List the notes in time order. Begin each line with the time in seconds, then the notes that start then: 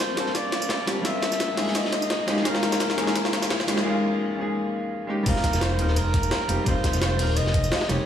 Already playing: G3 A#3 C4 D4 F4 G4 A4 C5, riser
0.00 snare, ride
0.14 G3 A#3 C4, snare, closed hi-hat, ride
0.19 D4 A4
0.26 snare
0.35 D5, kick, snare, closed hi-hat, ride, tambourine
0.52 snare, closed hi-hat, ride
0.62 tambourine
0.69 kick, snare, closed hi-hat, ride
0.86 G3 A#3 C4 D4 G4, snare, closed hi-hat, ride, tambourine
1.02 G3 A#3 C4 E5, kick, snare, closed hi-hat, ride, tambourine
1.06 D4 F4
1.22 snare, closed hi-hat, ride, tambourine
1.32 snare, tambourine
1.40 kick, snare, closed hi-hat, ride, tambourine
1.55 G#3 A#3 C#4, snare, closed hi-hat, open hi-hat
1.59 D#4 G#4
1.67 snare
1.75 D#5, kick, snare, closed hi-hat, ride, tambourine
1.85 snare
1.92 snare, closed hi-hat, ride
2.02 tambourine
2.10 kick, snare, closed hi-hat, ride
2.26 G#3 A#3 C#4 D#4 G4, snare, closed hi-hat, ride, tambourine
2.37 snare
2.43 G#3 A#3 C#4 A#4, kick, snare, closed hi-hat, ride, tambourine
2.47 D#4 F4
2.55 snare
2.62 snare, closed hi-hat, ride, tambourine
2.72 snare, tambourine
2.80 kick, snare, closed hi-hat, ride, tambourine
2.90 snare
2.95 G#3 A#3 C#4, snare, closed hi-hat, ride
2.99 D#4 G#4
3.07 snare
3.15 kick, snare, closed hi-hat, ride, tambourine
3.25 snare
3.33 snare, closed hi-hat, ride
3.42 snare, tambourine
3.50 kick, snare, closed hi-hat, ride
3.60 snare
3.67 G#3 A#3 C#4 D#4 G4, snare, closed hi-hat, ride, tambourine
3.78 snare
3.83 G#3 A#3 C#4
3.87 D#4 F4
4.36 G#3 A#3 C#4
4.40 D#4 G#4
5.07 G#3 A#3 C#4 D#4 G4
5.23 F1 G3 A#3 C4 A#4, kick, closed hi-hat, crash, ride, tambourine
5.28 D#4 F4
5.36 snare
5.43 kick, snare, closed hi-hat, ride, tambourine
5.53 F1, snare, tambourine
5.61 C5, snare, closed hi-hat, ride, tambourine
5.76 D#1 G3 A#3 C4, closed hi-hat, ride
5.80 D#4 A#4
5.88 snare
5.96 F1 A#4, closed hi-hat, ride, tambourine
6.14 kick, snare, closed hi-hat, ride
6.23 F1, tambourine
6.31 snare, closed hi-hat, ride
6.48 F1 G3 A#3 C4 D#4 G4, closed hi-hat, ride, tambourine
6.64 F1 G3 A#3 C4 C5, kick, closed hi-hat, ride, tambourine
6.68 D#4 F4
6.84 kick, snare, closed hi-hat, ride, tambourine
6.93 F1, snare, tambourine
7.02 C5, snare, closed hi-hat, ride, tambourine
7.16 D#1 G3 A#3 C4, closed hi-hat, open hi-hat
7.21 D#4 A#4
7.36 F1 D#5, closed hi-hat, ride, tambourine
7.47 snare
7.54 kick, closed hi-hat, ride
7.64 F1, tambourine
7.71 snare, closed hi-hat, ride
7.76 snare, ride
7.81 snare, ride
7.88 F1 G3 A#3 C4 D#4 G4 C#5, snare, closed hi-hat, ride, tambourine